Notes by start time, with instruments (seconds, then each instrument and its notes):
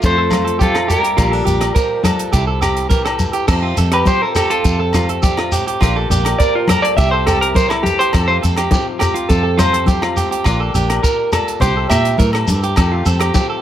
Already playing: steel-string acoustic guitar A3 F4, clean electric guitar F4
0.02 steel-string acoustic guitar F2, fingered electric bass F2, tenor saxophone A3, clean electric guitar A4 C5, kick, closed hi-hat, muted conga, shekere
0.18 clean electric guitar A4
0.30 clean electric guitar F4, steel-string acoustic guitar F4, cross-stick, closed hi-hat, high conga, low agogo, shekere
0.45 clean electric guitar A4, closed hi-hat
0.59 tenor saxophone F3, steel-string acoustic guitar A3, clean electric guitar F4 G4 A4, kick, closed hi-hat, high conga, shekere
0.74 clean electric guitar F4, cross-stick, low agogo
0.88 tenor saxophone G3, clean electric guitar G4 A#4, closed hi-hat, shekere
1.03 clean electric guitar G4, closed hi-hat
1.17 fingered electric bass A#1, steel-string acoustic guitar A#2 C4, clean electric guitar F4, kick, cross-stick, closed hi-hat, muted conga, low agogo, shekere
1.31 steel-string acoustic guitar D4, clean electric guitar A4
1.45 fingered electric bass A#1, clean electric guitar G4, closed hi-hat, muted conga, low conga, shekere
1.61 cross-stick, closed hi-hat, low agogo, shekere
1.75 steel-string acoustic guitar F3 G4, clean electric guitar A#4, kick, closed hi-hat, shekere
2.04 steel-string acoustic guitar D4, clean electric guitar A4, cross-stick, closed hi-hat, high conga, low agogo, shekere
2.19 closed hi-hat, shekere
2.32 fingered electric bass C2, steel-string acoustic guitar C3 E4, clean electric guitar G4, kick, closed hi-hat, muted conga, shekere
2.47 clean electric guitar A4
2.62 clean electric guitar G4, cross-stick, closed hi-hat, low agogo, shekere
2.77 closed hi-hat, shekere
2.90 steel-string acoustic guitar E3 G4, clean electric guitar A#4, kick, closed hi-hat, high conga, shekere
3.05 clean electric guitar A4, cross-stick, low agogo
3.19 steel-string acoustic guitar E4, closed hi-hat, muted conga, high conga, shekere
3.33 clean electric guitar G4, closed hi-hat, shekere
3.48 fingered electric bass F2, steel-string acoustic guitar F2 A3 C4 G4, clean electric guitar A4, kick, cross-stick, crash, muted conga, low agogo, shekere
3.62 clean electric guitar F4
3.77 fingered electric bass F2, steel-string acoustic guitar C4, clean electric guitar A4, closed hi-hat, muted conga, shekere
3.92 clean electric guitar G4 B4, cross-stick, closed hi-hat, low agogo, shekere
4.05 steel-string acoustic guitar F3, clean electric guitar G4 C5, kick, closed hi-hat, high conga, shekere
4.22 clean electric guitar A4 A#4
4.35 clean electric guitar G4 A4, steel-string acoustic guitar G4, cross-stick, closed hi-hat, low agogo, shekere
4.50 clean electric guitar F4 A4, closed hi-hat
4.64 fingered electric bass F2, steel-string acoustic guitar C3, kick, closed hi-hat, muted conga, shekere
4.80 clean electric guitar A4
4.93 steel-string acoustic guitar A3, clean electric guitar F4, cross-stick, closed hi-hat, high conga, low agogo, shekere
5.09 clean electric guitar A4, closed hi-hat
5.23 steel-string acoustic guitar G2, clean electric guitar G4, kick, closed hi-hat, high conga, shekere
5.37 clean electric guitar F4, cross-stick, low agogo
5.52 steel-string acoustic guitar A2, clean electric guitar G4, closed hi-hat, muted conga, shekere
5.67 clean electric guitar G4, closed hi-hat
5.81 fingered electric bass A#1, steel-string acoustic guitar A#2 A#3 D4 G4, clean electric guitar F4, kick, cross-stick, closed hi-hat, muted conga, low agogo, shekere
5.96 clean electric guitar A4
6.10 fingered electric bass A#1, steel-string acoustic guitar D4, clean electric guitar G4, closed hi-hat, muted conga, shekere
6.25 cross-stick, closed hi-hat, low agogo, shekere
6.39 steel-string acoustic guitar F3, clean electric guitar A#4 D5, kick, closed hi-hat, shekere
6.55 clean electric guitar F4
6.67 steel-string acoustic guitar G4, clean electric guitar A4 A#4, cross-stick, closed hi-hat, high conga, low agogo, shekere
6.82 clean electric guitar D5, closed hi-hat
6.96 fingered electric bass C2, steel-string acoustic guitar C3 C4 E4 G4, clean electric guitar G4 E5, kick, closed hi-hat, muted conga, low conga, shekere
7.11 clean electric guitar A4 C5
7.26 steel-string acoustic guitar E4, clean electric guitar G4 A4, cross-stick, closed hi-hat, low agogo, shekere
7.41 clean electric guitar A#4, closed hi-hat
7.54 clean electric guitar A#4 C5, kick, closed hi-hat, high conga, shekere
7.69 clean electric guitar E4 A4, cross-stick, low agogo
7.83 clean electric guitar G4, closed hi-hat, muted conga, high conga, shekere
7.87 steel-string acoustic guitar E4
7.99 clean electric guitar G4 C5, closed hi-hat
8.13 steel-string acoustic guitar F2 A3 C4 G4, fingered electric bass F2, clean electric guitar A4, kick, cross-stick, closed hi-hat, muted conga, low agogo, shekere
8.28 clean electric guitar F4 C5
8.42 fingered electric bass F2, steel-string acoustic guitar C4, clean electric guitar A4, closed hi-hat, muted conga, shekere
8.56 clean electric guitar G4, cross-stick, closed hi-hat, low agogo, shekere
8.71 steel-string acoustic guitar F3, clean electric guitar G4, kick, closed hi-hat, high conga, shekere
8.99 clean electric guitar G4, steel-string acoustic guitar G4, cross-stick, closed hi-hat, low agogo, shekere
9.14 clean electric guitar F4, closed hi-hat
9.29 fingered electric bass F2, steel-string acoustic guitar C3, clean electric guitar A4, kick, closed hi-hat, muted conga, shekere
9.43 clean electric guitar A4
9.58 steel-string acoustic guitar A3, clean electric guitar F4 C5, cross-stick, closed hi-hat, high conga, low agogo, shekere
9.73 clean electric guitar A4, closed hi-hat
9.86 steel-string acoustic guitar F3, clean electric guitar G4, kick, closed hi-hat, high conga, shekere
10.02 clean electric guitar F4, cross-stick, low agogo
10.16 steel-string acoustic guitar C4, clean electric guitar G4, closed hi-hat, muted conga, shekere
10.31 clean electric guitar G4, closed hi-hat
10.44 fingered electric bass A#1, steel-string acoustic guitar A#2 A#3 D4 G4, clean electric guitar F4, kick, cross-stick, closed hi-hat, muted conga, low agogo, shekere
10.60 clean electric guitar A4
10.73 fingered electric bass A#1, steel-string acoustic guitar D4, clean electric guitar G4, closed hi-hat, muted conga, shekere
10.90 cross-stick, closed hi-hat, low agogo
11.03 clean electric guitar A#4, kick, closed hi-hat, shekere
11.32 steel-string acoustic guitar A#2, clean electric guitar A4, cross-stick, closed hi-hat, low agogo, shekere
11.48 closed hi-hat, shekere
11.60 fingered electric bass C2, steel-string acoustic guitar C3 E4 G4, clean electric guitar G4 C5, muted steel-string acoustic guitar stroke, kick, closed hi-hat, muted conga, low conga, shekere
11.77 clean electric guitar A4
11.90 fingered electric bass A#2, steel-string acoustic guitar E4, clean electric guitar G4 E5, cross-stick, closed hi-hat, low agogo, shekere
12.05 closed hi-hat, shekere
12.18 fingered electric bass A2, steel-string acoustic guitar E3, clean electric guitar A#4, kick, closed hi-hat, high conga, shekere
12.33 clean electric guitar A4, cross-stick, low agogo
12.48 fingered electric bass G2, steel-string acoustic guitar G4, closed hi-hat, muted conga, high conga, shekere
12.63 clean electric guitar G4, closed hi-hat, shekere
12.76 fingered electric bass F2, steel-string acoustic guitar F2 A3, clean electric guitar A4, kick, cross-stick, closed hi-hat, muted conga, low agogo, shekere
12.80 steel-string acoustic guitar C4 G4
12.92 clean electric guitar F4
13.06 fingered electric bass F2, steel-string acoustic guitar C4, clean electric guitar A4, closed hi-hat, muted conga, shekere
13.20 clean electric guitar G4, cross-stick, closed hi-hat, low agogo, shekere
13.34 steel-string acoustic guitar F3, clean electric guitar G4, kick, closed hi-hat, high conga, shekere
13.50 clean electric guitar A4